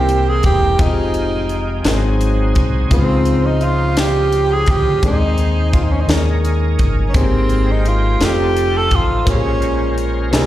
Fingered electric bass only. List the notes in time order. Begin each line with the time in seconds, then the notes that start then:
Already playing: C2
0.44 E1
0.79 F1
1.85 G#1
2.56 C2
2.91 C#2
4.68 D2
5.03 D#2
6.08 D#2
6.80 G1
7.15 G#1
8.20 F1
8.91 A1
9.27 A#1
10.32 C2